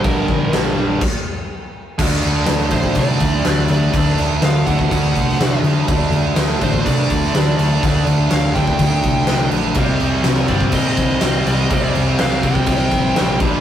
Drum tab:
CC |x---x---x-------|x-x-x-x-x-x-x-x-|x-x-x-x-x-x-x-x-|x-x-x-x-x-x-x-x-|
SD |----o-----------|----oo------o---|----oo-----oo---|----oo-----oo---|
BD |o-o-----o-------|o-----ooo-o-----|o-----ooo-o-----|o-----ooo-o-----|

CC |x-x-x-x-x-x-x-x-|x-x-x-x-x-x-x-x-|x-x-x-x-x-x-x-x-|
SD |----oo------o---|----oo------o---|----oo------o---|
BD |o-----ooo-o-----|o-----ooo-o-----|o-----ooo-o---o-|